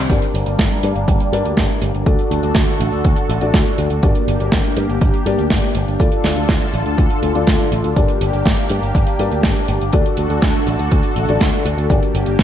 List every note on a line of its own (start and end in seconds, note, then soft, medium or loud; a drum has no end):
0.10 0.18 G1 loud
0.10 2.04 G3 medium
0.10 2.04 A#3 medium
0.10 2.04 D4 medium
0.10 1.30 D4 medium
0.10 1.30 G4 medium
0.10 1.30 A#4 medium
0.10 1.30 D5 medium
0.10 kick loud
0.10 closed hi-hat medium
0.22 closed hi-hat medium
0.34 0.43 G1 medium
0.34 closed hi-hat loud
0.46 0.55 G1 medium
0.46 closed hi-hat medium
0.59 0.67 G1 medium
0.59 kick loud
0.59 snare loud
0.59 closed hi-hat medium
0.71 closed hi-hat medium
0.83 0.92 G2 medium
0.83 closed hi-hat medium
0.95 1.04 G1 medium
0.95 closed hi-hat medium
1.08 1.17 G1 medium
1.08 kick loud
1.08 closed hi-hat medium
1.20 closed hi-hat medium
1.33 1.41 G2 loud
1.33 2.03 D4 medium
1.33 2.03 G4 medium
1.33 2.03 A#4 medium
1.33 2.03 D5 medium
1.33 closed hi-hat loud
1.45 1.54 D2 medium
1.45 closed hi-hat medium
1.57 1.66 G1 loud
1.57 kick loud
1.57 snare loud
1.57 closed hi-hat medium
1.70 closed hi-hat medium
1.82 1.90 G1 medium
1.82 closed hi-hat loud
1.94 2.03 G1 medium
1.94 closed hi-hat medium
2.06 2.15 D2 loud
2.06 4.01 D3 medium
2.06 3.39 D4 medium
2.06 12.43 D4 medium
2.06 4.01 F#4 medium
2.06 3.39 F#4 medium
2.06 3.39 A4 medium
2.06 4.01 A4 medium
2.06 3.39 D5 medium
2.06 kick loud
2.06 closed hi-hat medium
2.19 closed hi-hat medium
2.31 2.40 D2 medium
2.31 closed hi-hat loud
2.43 2.52 D2 medium
2.43 closed hi-hat medium
2.55 2.64 D2 loud
2.55 kick loud
2.55 snare loud
2.55 closed hi-hat medium
2.68 closed hi-hat medium
2.80 2.89 A1 medium
2.80 closed hi-hat loud
2.92 3.01 D2 medium
2.92 closed hi-hat soft
3.05 3.13 D2 loud
3.05 kick loud
3.05 closed hi-hat medium
3.16 closed hi-hat medium
3.29 3.38 A1 loud
3.29 closed hi-hat medium
3.41 3.50 A1 medium
3.41 4.00 D4 medium
3.41 4.00 F#4 medium
3.41 4.00 A4 medium
3.41 4.00 D5 medium
3.41 closed hi-hat medium
3.54 3.62 D2 loud
3.54 kick loud
3.54 snare loud
3.54 closed hi-hat medium
3.66 closed hi-hat medium
3.78 3.87 D2 medium
3.78 closed hi-hat medium
3.90 3.99 D2 medium
3.90 closed hi-hat medium
4.03 4.12 G1 loud
4.03 5.98 A#3 medium
4.03 5.23 D4 medium
4.03 5.98 G4 medium
4.03 5.23 G4 medium
4.03 5.23 A#4 medium
4.03 5.23 D5 medium
4.03 kick loud
4.03 closed hi-hat medium
4.15 closed hi-hat medium
4.28 4.36 G1 medium
4.28 closed hi-hat loud
4.40 4.49 G1 medium
4.40 closed hi-hat medium
4.52 4.61 G1 loud
4.52 kick loud
4.52 snare loud
4.52 closed hi-hat medium
4.64 closed hi-hat medium
4.77 4.85 G2 medium
4.77 closed hi-hat medium
4.89 4.98 G1 medium
4.89 closed hi-hat soft
5.01 5.10 G1 loud
5.01 kick loud
5.01 closed hi-hat medium
5.14 closed hi-hat soft
5.26 5.35 G2 medium
5.26 5.97 D4 medium
5.26 5.97 G4 medium
5.26 5.97 A#4 medium
5.26 5.97 D5 medium
5.26 closed hi-hat medium
5.38 5.47 D2 medium
5.38 closed hi-hat medium
5.50 5.59 G1 loud
5.50 kick loud
5.50 snare loud
5.50 closed hi-hat medium
5.63 closed hi-hat medium
5.75 5.84 G1 medium
5.75 closed hi-hat medium
5.87 5.96 G1 medium
5.87 closed hi-hat soft
6.00 6.08 D2 loud
6.00 7.95 D3 medium
6.00 7.32 D4 medium
6.00 7.32 F4 medium
6.00 7.95 F4 medium
6.00 7.32 A4 medium
6.00 7.95 A4 medium
6.00 7.32 D5 loud
6.00 kick loud
6.00 closed hi-hat medium
6.12 closed hi-hat medium
6.24 6.33 D2 medium
6.24 snare medium
6.24 closed hi-hat medium
6.36 6.45 D2 medium
6.36 closed hi-hat medium
6.49 6.58 D2 loud
6.49 kick loud
6.49 snare loud
6.49 closed hi-hat medium
6.62 closed hi-hat medium
6.74 6.82 A1 medium
6.74 closed hi-hat medium
6.86 6.94 D2 medium
6.86 closed hi-hat soft
6.98 7.07 D2 medium
6.98 kick loud
6.98 closed hi-hat medium
7.10 closed hi-hat medium
7.23 7.31 D2 medium
7.23 closed hi-hat medium
7.35 7.44 D2 medium
7.35 7.94 D4 medium
7.35 7.94 F4 medium
7.35 7.94 A4 medium
7.35 7.94 D5 medium
7.35 closed hi-hat soft
7.47 7.56 D2 loud
7.47 kick loud
7.47 snare loud
7.47 closed hi-hat medium
7.60 closed hi-hat medium
7.72 7.80 A1 medium
7.72 closed hi-hat medium
7.84 7.93 D2 medium
7.84 closed hi-hat medium
7.96 8.05 G1 loud
7.96 9.91 A#3 medium
7.96 9.16 D4 medium
7.96 9.91 G4 medium
7.96 9.17 G4 medium
7.96 9.17 A#4 medium
7.96 9.17 D5 medium
7.96 kick loud
7.96 closed hi-hat medium
8.08 closed hi-hat medium
8.21 8.30 G1 medium
8.21 closed hi-hat loud
8.33 8.42 G1 medium
8.33 closed hi-hat medium
8.46 8.54 G1 loud
8.46 kick loud
8.46 snare loud
8.46 closed hi-hat medium
8.57 closed hi-hat medium
8.70 8.79 G2 medium
8.70 closed hi-hat loud
8.82 8.91 G1 medium
8.82 closed hi-hat medium
8.95 9.03 G1 loud
8.95 kick loud
8.95 closed hi-hat medium
9.07 closed hi-hat medium
9.19 9.28 G2 medium
9.19 9.90 D4 medium
9.19 9.90 G4 medium
9.19 9.90 A#4 medium
9.19 9.90 D5 medium
9.19 closed hi-hat medium
9.31 9.40 D2 medium
9.31 closed hi-hat soft
9.43 9.53 G1 loud
9.43 kick loud
9.43 snare loud
9.43 closed hi-hat medium
9.56 closed hi-hat medium
9.68 9.77 G1 medium
9.68 closed hi-hat medium
9.81 9.90 G1 medium
9.81 closed hi-hat medium
9.93 10.02 D2 loud
9.93 11.88 D3 medium
9.93 11.26 D4 medium
9.93 11.88 F#4 medium
9.93 11.26 F#4 medium
9.93 11.88 A4 medium
9.93 11.26 A4 medium
9.93 11.26 D5 loud
9.93 kick loud
9.93 closed hi-hat medium
10.06 closed hi-hat medium
10.17 10.26 D2 medium
10.17 closed hi-hat medium
10.30 10.39 D2 medium
10.30 closed hi-hat medium
10.42 10.51 D2 loud
10.42 kick loud
10.42 snare loud
10.42 closed hi-hat medium
10.54 closed hi-hat medium
10.67 10.76 A1 medium
10.67 closed hi-hat medium
10.79 10.88 D2 medium
10.79 closed hi-hat medium
10.91 11.00 D2 loud
10.91 kick loud
10.91 closed hi-hat medium
11.03 closed hi-hat medium
11.16 11.25 A1 medium
11.16 closed hi-hat medium
11.28 11.37 A1 medium
11.28 11.87 D4 medium
11.28 11.87 F#4 medium
11.28 11.87 A4 medium
11.28 11.87 D5 medium
11.28 closed hi-hat medium
11.41 11.49 D2 loud
11.41 kick loud
11.41 snare loud
11.41 closed hi-hat medium
11.53 closed hi-hat medium
11.65 11.74 D2 medium
11.65 closed hi-hat loud
11.78 11.86 D2 medium
11.78 closed hi-hat medium
11.90 11.99 G1 loud
11.90 12.43 A#3 medium
11.90 12.43 D4 medium
11.90 12.43 G4 medium
11.90 12.43 A#4 medium
11.90 12.43 D5 medium
11.90 kick loud
11.90 closed hi-hat medium
12.03 closed hi-hat medium
12.14 12.23 G1 loud
12.14 closed hi-hat loud
12.26 12.35 G1 medium
12.26 closed hi-hat medium
12.39 kick loud
12.39 snare loud
12.39 closed hi-hat medium